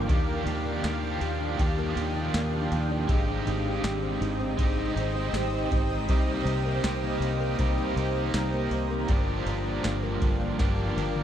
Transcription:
Already playing: G2 F3 A#3 D4 G4 F5 G5
0.08 D#2 D#3 F3 A#3 D4 G4 D#6, kick, ride
0.29 A#3
0.46 D#2 G4, ride
0.66 D4
0.83 D#2 F3 A#3 D4, snare, ride, tambourine
0.88 G4
1.03 D4
1.21 D#2 G4, ride
1.40 D4
1.57 D#2 D#3 F3 A#3 G4, kick, ride
1.63 D4 G4
1.79 A#3
1.96 D#2 G4, ride
2.16 D4
2.34 D#2 A#3, snare, ride, tambourine
2.53 D4
2.72 D#2 G4, ride
2.91 D4
3.07 G#1 G#2 G#3 C4 D#4 C5 D#5 G5, kick, ride
3.12 D#4 G4
3.28 G3
3.46 G#1 D#4, ride
3.65 C4
3.84 G#1 G3, snare, ride, tambourine
4.03 C4
4.21 G#1 D#4, ride
4.40 C4
4.57 G#1 G#2 G#3 C4 D#4, kick, ride
4.62 D#4 G4
4.78 G3
4.96 G#1 D#4, ride
5.15 C4
5.33 G#1 G3, snare, ride, tambourine
5.54 C4
5.71 G#1 D#4, kick, ride
5.91 C4
6.09 C2 C3 G3 A#3 D#4 G4 A#5, kick, ride
6.28 G3
6.45 C2 D#4, ride
6.66 A#3
6.83 C2 G3 A#3 D#4, snare, ride, tambourine
6.88 G4
7.04 A#3
7.20 C2 D#4, ride
7.40 A#3
7.59 C2 C3 G3 A#3 D#4 G4, kick, ride
7.78 G3
7.95 C2 D#4 G4, ride
8.00 A#3
8.15 A#3
8.34 C2 G3, snare, ride, tambourine
8.54 A#3
8.71 C2 D#4, ride
8.91 A#3
9.08 G1 G2 D3 F3 D4 A#4 F5 G5 D6, kick, ride
9.12 A#3 D4 G4
9.29 F3
9.46 G1 D4, ride
9.66 A#3
9.84 G1 F3, snare, ride, tambourine
10.03 A#3
10.22 G1 D4, kick, ride
10.40 A#3
10.59 G1 G2 D3 F3 A#3 D4 G4, kick, snare, ride
10.79 F3
10.96 G1 A#3 D4 G4, high tom, ride
11.01 F3
11.16 A#3, high tom

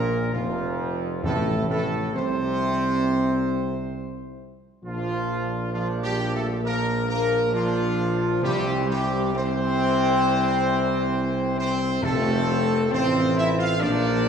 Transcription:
Already playing: A#1 A#2 A#3 A#4
0.33 F1 F2 F3 F4
1.23 A1 F2 A2 A3 A4
1.68 A1 A2 A3 A4
2.13 C2 C3 C4 C5
4.84 A#1 F3 D4 F4
5.72 F3 D4 F4
6.03 G3 G4
6.33 A3 A4
6.63 F3 A#3 D4 A#4
7.07 A#3 A#4
7.52 F3 D4 F4
8.42 C2 C3 E3 G3 C4 G4
8.87 G3 G4
9.34 E3 C4 C5
11.58 C4 C5
12.02 F1 F2 F3 A3 C4 A4
12.91 A1 F3 C4 C5
13.36 E4 E5
13.57 F4 F5
13.80 A#1 F3 A#3 D4 D5

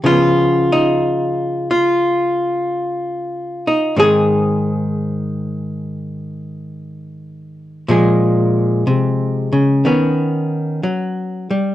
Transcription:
0.04 C#3 F3 B3 C#4 F4
0.72 D#4
1.71 F4
3.67 D#4
3.97 G#2 D#3 C4 D#4 G#4
7.88 A#2 F3 G#3 G#4
8.87 C3
9.53 C#3
9.85 D#3 B3 C#4
10.83 F#3
11.51 G3

